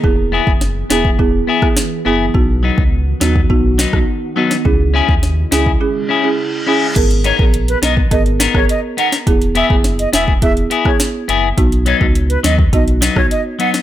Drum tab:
CC |----------------|----------------|----------------|x---------------|
HH |----------------|----------------|----------------|xxx-xxx-xxx-x-x-|
SD |----o-o----ro---|------o---or---o|----o-o---------|------o---or---o|
BD |o--o---oo--o----|o--o---oo--o----|o--o---o--------|o--o---oo--o----|

CC |----------------|----------------|
HH |xxx-xxx-xxx-x-x-|xxx-xxx-xxx-x-x-|
SD |----o-o----ro---|------o---or---o|
BD |o--o---oo--o----|o--o---oo--o----|